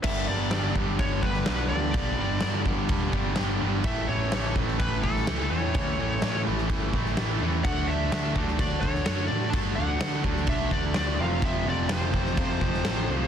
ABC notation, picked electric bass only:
X:1
M:4/4
L:1/8
Q:1/4=126
K:Glyd
V:1 name="Picked electric bass" clef=bass
G,,, G,,, G,,, G,,, G,,, G,,, B,,, D,, | B,,, G,,, G,, G,,, E,,, G,,, G,,, G,,, | A,,, A,,, A,,, A,,, A,,, A,,, C,, E,, | D,, A,,, A,, A,,, G,,, A,,, A,,, E,, |
D,, D,, D,, D,, D,, D,, F,, A,, | G,, D,, D, D,, B,,, D,, D,, =F,,, | =F,,, F,,, F,,, F,,, F,,, F,,, A,,, =C,, |]